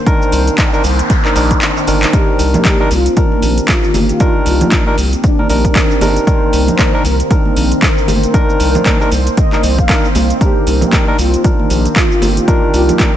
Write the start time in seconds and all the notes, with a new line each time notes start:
Already playing: D#3 A#3 C4 C5
0.06 D#3 D4 A#4, kick, closed hi-hat, noise sweep, cabasa
0.22 cabasa
0.32 C2, open hi-hat, cabasa
0.47 closed hi-hat, cabasa
0.58 D#3 D4 A#4, kick, clap, closed hi-hat, cabasa
0.73 D#3 D4 A#4, cabasa
0.84 C2, open hi-hat, cabasa
0.99 closed hi-hat, cabasa
1.10 kick, closed hi-hat, cabasa
1.25 D#3 D4 A#4, clap, cabasa
1.35 A#1 D#3 D4 A#4, open hi-hat, cabasa
1.51 kick, closed hi-hat, cabasa
1.62 clap, closed hi-hat, cabasa
1.77 cabasa
1.87 G1 D#3 D4 A#4, open hi-hat, cabasa
2.03 clap, closed hi-hat, cabasa
2.13 D#3 D4 G4 A#4, kick, closed hi-hat, cabasa
2.39 C2, open hi-hat, cabasa
2.54 G4, closed hi-hat, high conga, low conga, cabasa
2.65 D#3 D4 A#4, kick, clap, closed hi-hat, cabasa
2.80 D#3 D4 A#4
2.91 C2 F4, open hi-hat, cabasa
3.06 closed hi-hat, cabasa
3.16 D#3 D4 A#4, kick, closed hi-hat, cabasa
3.32 high conga
3.42 A#1, open hi-hat, cabasa
3.58 closed hi-hat, cabasa
3.68 F4, kick, clap, closed hi-hat, cabasa
3.84 cabasa
3.94 G1, open hi-hat, high bongo, high conga, cabasa
4.09 F4, closed hi-hat, cabasa
4.20 D#3 D4 A#4, kick, closed hi-hat, cabasa
4.46 C2 F4, open hi-hat, cabasa
4.61 closed hi-hat, high conga, low conga, cabasa
4.72 D#3 D4 A#4, kick, clap, closed hi-hat, cabasa
4.87 D#3 D4 A#4, high bongo
4.98 C2, open hi-hat, cabasa
5.13 closed hi-hat, cabasa
5.24 D4, kick, closed hi-hat, cabasa
5.38 D#3 D4 A#4, high conga
5.49 A#1 D#3 D4 A#4, open hi-hat, cabasa
5.65 D4, kick, closed hi-hat, cabasa
5.75 kick, clap, closed hi-hat, cabasa
5.91 cabasa
6.01 G1 D#3 D4 A#4, open hi-hat, high bongo, high conga, cabasa
6.16 closed hi-hat, cabasa
6.27 D#3 D4 A#4 C5, kick, closed hi-hat, cabasa
6.53 C2, open hi-hat, cabasa
6.67 C5, closed hi-hat, high conga, low conga, cabasa
6.78 D#3 D4 A#4, kick, clap, closed hi-hat, cabasa
6.94 D#3 D4 A#4
7.05 C2 A#4, open hi-hat, cabasa
7.20 closed hi-hat, cabasa
7.30 D#3 D4 A#4, kick, closed hi-hat, cabasa
7.45 high conga
7.56 A#1, open hi-hat, cabasa
7.72 closed hi-hat, cabasa
7.82 A#4, kick, clap, closed hi-hat, cabasa
7.98 cabasa
8.08 G1, open hi-hat, high bongo, high conga, cabasa
8.23 A#4, closed hi-hat, cabasa
8.34 D#3 D4 A#4, kick, closed hi-hat, cabasa
8.50 cabasa
8.60 C2 A#4, open hi-hat, cabasa
8.75 closed hi-hat, high conga, low conga, cabasa
8.85 D#3 D4 A#4, kick, clap, closed hi-hat, cabasa
9.01 D#3 D4 A#4, high bongo, cabasa
9.12 C2, open hi-hat, cabasa
9.27 closed hi-hat, cabasa
9.37 D#5, kick, closed hi-hat, cabasa
9.52 D#3 D4 A#4, clap, high conga, cabasa
9.63 C2, open hi-hat, cabasa
9.78 F5, kick, closed hi-hat, cabasa
9.89 D#3 D4 A#4, kick, clap, closed hi-hat, cabasa
10.05 cabasa
10.15 C2, open hi-hat, high bongo, high conga, cabasa
10.30 closed hi-hat, cabasa
10.41 D#3 D4 G4 A#4, kick, closed hi-hat, cabasa
10.67 C2, open hi-hat, cabasa
10.81 G4, closed hi-hat, high conga, low conga, cabasa
10.92 D#3 D4 A#4, kick, clap, closed hi-hat, cabasa
11.07 D#3 D4 A#4
11.18 C2 F4, open hi-hat, cabasa
11.34 closed hi-hat, cabasa
11.44 D#3 D4 A#4, kick, closed hi-hat, cabasa
11.60 high conga
11.70 A#1, open hi-hat, cabasa
11.85 closed hi-hat, cabasa
11.96 F4, kick, clap, closed hi-hat, cabasa
12.12 cabasa
12.22 G1, open hi-hat, high bongo, high conga, cabasa
12.37 F4, closed hi-hat, cabasa
12.47 D#3 D4 A#4, kick, closed hi-hat, cabasa
12.74 C2 F4, open hi-hat, cabasa
12.89 closed hi-hat, high conga, low conga, cabasa
12.99 D#3 D4 A#4, kick, clap, closed hi-hat, cabasa